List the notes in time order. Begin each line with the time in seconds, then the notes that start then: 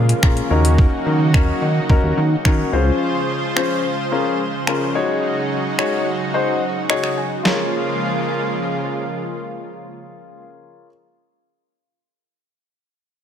Already playing: A#2 C#3 F3 G#3 A#3 F4
0.09 closed hi-hat
0.23 A#2 C#4 F4 G#4 A#4, finger snap, kick
0.37 closed hi-hat
0.50 D#2 F#3 C#4 D#4 F#4 A#4
0.65 closed hi-hat
0.78 kick
1.06 D#3
1.34 D#2 C#4 D#4 F#4 A#4, finger snap, kick
1.62 D#3
1.89 D#2 C#4 D#4 F#4 A#4, kick
2.03 D#2
2.17 D#3
2.45 D#3 C#4 D#4 F#4 A#4, finger snap, kick
2.73 C#2 C#3 F3 G#3 C#4 F4 G#4 C5
3.56 C#4 F4 G#4 C5, finger snap
4.12 C#4 F4 G#4 A#4
4.67 C#4 F4 G#4 A#4, finger snap
4.95 F#3 D#4 F#4 G#4 C#5
5.78 D#4 F#4 G#4 C#5, finger snap
6.34 D#4 F#4 G#4 C5
6.89 D#4 F#4 G#4 C#5 D#5, finger snap
7.04 finger snap
7.17 G#5
7.43 C#3 F3 G#3 A#3 F4 G#4 A#4, snare
7.47 C#5